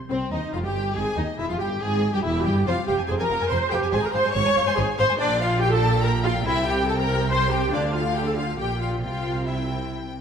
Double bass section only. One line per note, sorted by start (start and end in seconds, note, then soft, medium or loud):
0.10 0.18 C2 medium
0.32 0.40 D#2 medium
0.53 0.64 F1 medium
0.64 0.96 G1 medium
0.96 1.04 G#1 medium
1.17 1.25 D#2 medium
1.39 1.49 E1 medium
1.60 1.81 G1 medium
1.82 2.13 G#1 medium
2.25 2.45 E1 medium
2.46 2.67 G1 medium
2.67 2.71 F1 medium
2.88 2.93 F1 medium
3.09 3.14 F1 medium
3.30 3.35 F1 medium
3.51 3.56 F1 medium
3.73 3.77 F1 medium
3.93 3.98 G#1 medium
4.14 4.18 G#1 medium
4.36 4.40 G#1 medium
4.57 4.61 G#1 medium
4.78 4.82 G#1 medium
4.99 5.03 G#1 medium
5.20 6.43 A#1 medium
6.46 7.74 C2 medium
7.74 8.56 D2 medium
8.60 9.03 A#1 medium
9.03 10.15 C2 medium